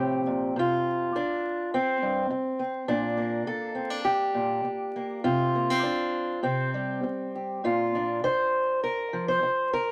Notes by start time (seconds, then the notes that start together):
Already playing: A2 C3 F3 C4 G4
0.27 A#2
0.56 C3 F4
1.15 D4, muted steel-string acoustic guitar stroke
1.74 C4
2.02 G2
2.31 muted steel-string acoustic guitar stroke
2.59 C4
2.88 A#2 D4
3.17 A#3
3.47 A4, muted steel-string acoustic guitar stroke
3.75 C4
3.90 D4
4.05 G4
4.34 A#2
4.65 muted steel-string acoustic guitar stroke
4.96 A#3
5.24 C3 F4
5.55 A#3
5.70 C4
5.83 D4, muted steel-string acoustic guitar stroke
6.43 C3 C4
6.74 G3
7.03 muted steel-string acoustic guitar stroke
7.35 G4
7.64 A#2 F4
7.95 D4
8.24 C5, muted steel-string acoustic guitar stroke
8.84 A#4
9.13 F3
9.28 C5
9.43 muted steel-string acoustic guitar stroke
9.73 A#4